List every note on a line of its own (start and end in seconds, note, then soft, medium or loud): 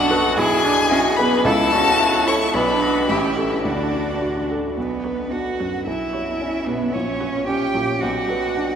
0.00 0.36 B1 medium
0.00 0.12 D4 medium
0.00 0.37 F#4 medium
0.00 0.37 F#5 loud
0.10 0.35 F#4 medium
0.10 0.40 F#4 medium
0.10 0.39 A4 medium
0.10 0.35 B4 medium
0.37 1.42 B1 medium
0.37 0.64 E4 medium
0.37 0.92 G#4 medium
0.37 1.17 G#4 medium
0.37 1.18 G#5 loud
0.64 1.07 D4 medium
0.64 0.72 D4 medium
0.90 0.99 C#4 medium
0.90 1.34 E4 medium
0.90 1.19 F#4 medium
1.17 1.47 B3 medium
1.17 1.44 G#4 medium
1.17 1.46 B4 medium
1.17 1.47 B4 medium
1.17 1.45 B5 loud
1.45 2.50 C#2 medium
1.45 1.73 E4 medium
1.45 1.53 A4 medium
1.45 2.27 A4 loud
1.45 2.29 A5 loud
1.72 2.01 C#4 medium
1.72 2.16 C#4 medium
1.72 2.01 F#4 medium
1.99 2.54 E4 medium
1.99 2.43 E4 medium
1.99 2.29 F#4 medium
2.27 2.54 E4 medium
2.27 2.54 A4 medium
2.27 2.36 C#5 medium
2.27 2.55 C#6 loud
2.54 3.07 B1 medium
2.54 2.83 D4 medium
2.54 3.11 D4 medium
2.54 3.11 B4 medium
2.54 3.11 B5 loud
2.81 3.08 F#4 medium
2.81 3.06 F#4 soft
3.09 3.63 A1 medium
3.09 3.65 C#4 medium
3.09 3.67 E4 medium
3.09 3.38 G4 medium
3.09 3.64 E5 medium
3.37 3.63 E4 medium
3.37 3.62 G4 soft
3.37 3.62 A4 soft
3.64 4.73 D2 soft
3.64 4.55 D4 soft
3.64 4.49 D4 medium
3.64 4.47 F#4 medium
3.64 4.47 D5 medium
3.93 4.38 D4 soft
4.22 4.66 F#4 soft
4.51 4.78 A4 soft
4.75 5.84 B1 soft
4.75 5.32 B3 medium
4.75 5.33 B4 soft
5.04 5.25 F#3 soft
5.04 5.49 B4 soft
5.04 5.25 D5 soft
5.31 5.76 D4 soft
5.31 5.85 F#4 medium
5.31 5.86 F#5 soft
5.60 5.87 F#2 soft
5.60 5.80 F#3 soft
5.60 5.80 D5 soft
5.86 6.91 B1 soft
5.86 6.67 E4 medium
5.86 6.68 E5 medium
6.13 6.33 G3 soft
6.13 6.33 C#5 soft
6.13 6.56 C#5 soft
6.41 6.84 C#4 soft
6.66 6.95 B2 soft
6.66 6.87 G3 soft
6.66 6.94 B3 medium
6.66 6.95 B4 medium
6.66 6.88 C#5 soft
6.93 7.99 A#1 soft
6.93 7.46 C#4 medium
6.93 7.49 C#5 medium
7.21 7.41 F#3 medium
7.21 7.41 C#5 soft
7.21 7.65 C#5 soft
7.47 7.91 C#4 soft
7.47 8.02 G4 medium
7.47 8.00 G5 medium
7.75 8.02 A#2 soft
7.75 7.95 F#3 soft
7.75 7.95 C#5 soft
8.01 8.75 B1 medium
8.01 8.75 F#4 medium
8.01 8.75 F#5 medium
8.27 8.49 F#3 medium
8.27 8.72 B4 soft
8.27 8.48 D5 medium
8.57 8.75 D4 soft